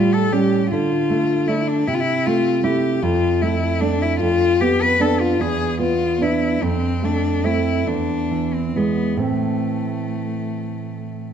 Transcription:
Already playing: nylon-string guitar A2 G3, cello F4
0.13 cello A4
0.32 nylon-string guitar G3 C#4, cello G4
0.71 nylon-string guitar D3, cello F4
1.10 nylon-string guitar A3
1.48 nylon-string guitar A3 D4, cello E4
1.67 cello D4
1.87 nylon-string guitar C3, cello E4
1.94 cello F4
2.00 cello E4
2.26 nylon-string guitar A3, cello F4
2.63 nylon-string guitar A3 E4, cello G4
3.02 nylon-string guitar F2, cello F4
3.42 nylon-string guitar A3, cello E4
3.81 nylon-string guitar A3 D4, cello D4
4.02 cello E4
4.21 nylon-string guitar F2, cello F4
4.61 nylon-string guitar B3, cello G4
4.82 cello B4
5.00 nylon-string guitar B3 D4, cello A4
5.21 cello F4
5.40 nylon-string guitar E2, cello G#4
5.80 nylon-string guitar B3, cello F4
6.21 nylon-string guitar B3 D4, cello E4
6.62 nylon-string guitar F2, cello C4
7.03 nylon-string guitar A3, cello D4
7.44 nylon-string guitar A3 C4, cello E4
7.86 nylon-string guitar E2, cello D4
8.31 nylon-string guitar E3
8.54 cello C4
8.76 nylon-string guitar E3 G#3, cello B3
9.16 nylon-string guitar A2 E3 C4
9.23 cello A3

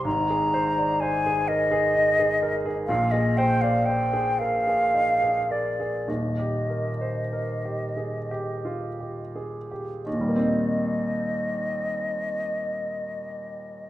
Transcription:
0.04 grand piano G#1 G#2, flute A#5
0.30 grand piano G#4
0.54 grand piano C5
0.78 grand piano D5
1.00 grand piano C5, flute G#5
1.26 grand piano G#4
1.48 grand piano A#4, flute D#5
1.71 grand piano G#4
1.95 grand piano D#4
2.19 grand piano G#4
2.42 grand piano A#4
2.66 grand piano G#4
2.87 grand piano A#1 A#2, flute F5
3.11 grand piano G#4, flute D#5
3.37 grand piano C5, flute G5
3.61 grand piano D5, flute F5
3.86 grand piano C5, flute G5
4.13 grand piano G#4
4.39 grand piano A#4, flute F5
4.67 grand piano G#4
4.94 grand piano D#4
5.22 grand piano G#4
5.50 grand piano A#4, flute D5
5.80 grand piano G#4
6.08 grand piano D#1 D#2, flute D#5
6.39 grand piano G4
6.70 grand piano A#4
7.01 grand piano C5
7.33 grand piano A#4
7.65 grand piano G4
7.97 grand piano G#4
8.31 grand piano G4
8.65 grand piano F4
9.00 grand piano G4
9.36 grand piano G#4
9.71 grand piano G4
10.04 grand piano D#2, flute D#5
10.13 grand piano A#2
10.21 grand piano G3
10.28 grand piano A#3
10.36 grand piano C4
10.43 grand piano D#4

